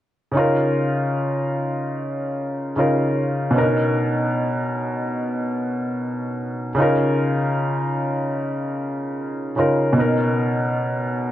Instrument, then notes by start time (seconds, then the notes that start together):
felt piano
0.32 C#3 C#4 D#4
0.37 F4 A#4
2.76 C#3 C#4 D#4 F4 A#4
3.51 B2 B3 C#4
3.56 D4 A#4
3.63 D#4
6.75 C#3 C#4 D#4
6.80 F4 A#4
9.56 C#3 C#4 D#4 F4 A#4
9.93 B2 B3 C#4
9.98 D#4 A#4